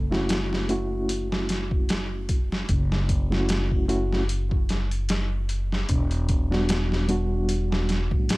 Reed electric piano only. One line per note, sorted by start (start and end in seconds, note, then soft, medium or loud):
0.10 0.64 A3 medium
0.10 0.65 C#4 medium
0.10 0.65 E4 medium
0.10 0.65 F#4 medium
0.68 3.25 A3 medium
0.68 3.26 C#4 medium
0.68 3.26 E4 medium
0.68 3.27 F#4 medium
3.30 3.84 A3 medium
3.30 3.84 C#4 medium
3.30 3.85 E4 medium
3.30 3.85 F#4 medium
3.88 4.22 A3 medium
3.88 4.22 C#4 medium
3.88 4.23 E4 medium
3.88 4.23 F#4 medium
6.50 7.04 G3 medium
6.50 7.04 B3 medium
6.50 7.04 D4 medium
6.50 7.05 F#4 medium
7.08 8.37 G3 medium
7.08 8.37 B3 medium
7.08 8.37 D4 medium
7.08 8.37 F#4 medium